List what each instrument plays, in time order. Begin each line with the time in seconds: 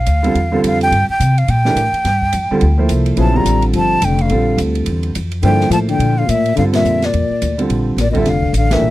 Already playing: flute F5
0.06 upright bass D2, hi-hat pedal, ride
0.23 grand piano D3 G3 C4 F4 A4, ride
0.35 upright bass E2, ride
0.52 grand piano D3 G3 C4 F4 A4
0.64 upright bass F2, flute F5, hi-hat pedal, ride
0.81 flute G5, ride
0.91 upright bass G2, ride
1.09 flute G5, muted upright bass stroke
1.20 upright bass C3, hi-hat pedal, ride
1.38 flute F5, ride
1.48 upright bass A#2, flute G5, ride
1.65 grand piano E3 A3 D4 G4 A#4, snare
1.75 upright bass A2, hi-hat pedal, ride
1.93 muted upright bass stroke, ride
2.05 upright bass G2, snare, ride
2.22 kick
2.32 upright bass F2, hi-hat pedal, ride
2.51 grand piano D3 G3 C4 F4 A4, muted upright bass stroke
2.61 upright bass D2, ride
2.78 grand piano F3 A#3 E4 A4 C5
2.89 upright bass C2, hi-hat pedal, ride
3.06 ride
3.17 upright bass A#1, grand piano C#3 F#3 B3 E4 G#4, trombone F3, flute A5, ride
3.33 grand piano D3 G3 C4 F4 A4, trombone G3, flute A#5
3.45 upright bass A1, hi-hat pedal, ride
3.62 ride
3.73 upright bass G1, trombone F3, flute A5, ride
4.02 upright bass F1, trombone D3, flute G5, hi-hat pedal, ride
4.19 trombone D3, flute F5, ride
4.29 upright bass A#1, grand piano D3 G3 C4 F4 A4, ride
4.58 upright bass D2, hi-hat pedal, ride
4.75 ride
4.86 upright bass E2, ride
5.03 ride
5.15 upright bass F2, hi-hat pedal, ride
5.31 ride
5.42 upright bass G2, trombone D3, grand piano F3 A#3 E4 A4 C5, flute G5, ride
5.60 snare
5.70 upright bass A2, trombone F3, flute A5, hi-hat pedal, ride
5.88 trombone D3, flute G5, ride
5.99 upright bass A#2, ride
6.17 trombone D3, flute F5
6.28 upright bass A2, trombone A#2, flute E5, hi-hat pedal, ride
6.45 ride
6.55 upright bass G2, trombone D3, grand piano D3 G3 C4 F4 A4, flute F5, ride
6.73 trombone A#2, flute E5, snare, ride
6.85 upright bass F2, hi-hat pedal
7.02 trombone A#2, flute D5, snare, ride
7.13 upright bass E2, ride
7.30 muted upright bass stroke
7.42 upright bass D2, hi-hat pedal, ride
7.58 grand piano D3 G3 C4 F4 A4, ride
7.69 upright bass A#1, ride
7.97 upright bass A1, trombone A#2, snare, hi-hat pedal, ride
8.01 flute D5
8.10 trombone A#2, grand piano D3, flute D#5
8.14 trombone C3, grand piano G3 C4 F4 A4, flute E5, kick, ride
8.25 upright bass F1, trombone D3, flute F5, snare, ride
8.43 kick
8.53 upright bass A1, hi-hat pedal, ride
8.57 trombone D3, flute F5
8.70 trombone A#2, grand piano E3 A3 D4 G4 A#4, flute E5, snare, ride
8.81 upright bass A#1